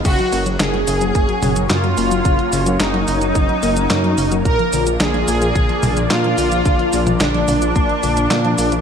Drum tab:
CC |x---------------|----------------|----------------|----------------|
HH |xxoxxxoxxxoxxxox|xxoxxxoxxxoxxxox|xxoxxxoxxxoxxxox|xxoxxxoxxxoxxxox|
SH |x-xxx-xxx-xxx-xx|x-xxx-xxx-xxx-xx|x-xxx-xxx-xxx-xx|x-xxx-xxx-xxx-xx|
CP |----x-------x---|----x-------x---|----x-------x---|----x-------x---|
SD |----o-------o---|----o-------o---|----o-------o---|----o-------o---|
T2 |----------o-----|----------------|----------o-----|---o--o---------|
BD |o-------o-------|o-------o-------|o-------o-------|o-------o-------|